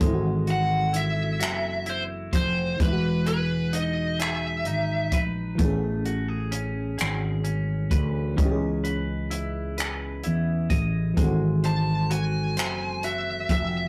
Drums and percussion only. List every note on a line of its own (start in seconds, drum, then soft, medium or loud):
0.01 kick loud
0.01 closed hi-hat medium
0.47 closed hi-hat soft
0.94 closed hi-hat medium
1.41 finger snap loud
1.41 closed hi-hat medium
1.86 closed hi-hat soft
2.33 kick medium
2.33 closed hi-hat medium
2.80 kick loud
2.80 closed hi-hat medium
3.26 closed hi-hat soft
3.73 closed hi-hat medium
4.20 finger snap loud
4.20 closed hi-hat medium
4.65 closed hi-hat soft
5.12 kick medium
5.12 closed hi-hat medium
5.59 kick loud
5.59 closed hi-hat medium
6.05 closed hi-hat soft
6.52 closed hi-hat medium
6.99 finger snap medium
6.99 closed hi-hat medium
7.45 closed hi-hat soft
7.91 kick medium
7.91 closed hi-hat medium
8.38 kick loud
8.38 closed hi-hat medium
8.85 closed hi-hat soft
9.31 closed hi-hat medium
9.78 finger snap medium
9.78 closed hi-hat medium
10.24 closed hi-hat soft
10.70 kick medium
10.70 closed hi-hat medium
11.17 kick loud
11.17 closed hi-hat medium
11.64 closed hi-hat soft
12.11 closed hi-hat medium
12.57 finger snap loud
12.57 closed hi-hat medium
13.03 closed hi-hat soft
13.49 kick medium
13.49 closed hi-hat medium